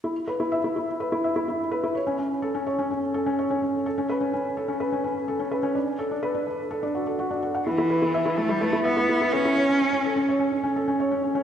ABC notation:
X:1
M:4/4
L:1/16
Q:1/4=126
K:Amix
V:1 name="Felt piano"
E z B E e E E z B E e E E z B E | c C C z A C c C C z A C c C C z | A C B C C z A C B C C z A C B C | D z A D B D D z A D F A F D A f |
E E B E e E E E B E e E E E B E | c C C C A C c C C C A C c C C C |]
V:2 name="Cello"
z16 | z16 | z16 | z16 |
E,6 A, G, A,2 B,4 C2- | C6 z8 z2 |]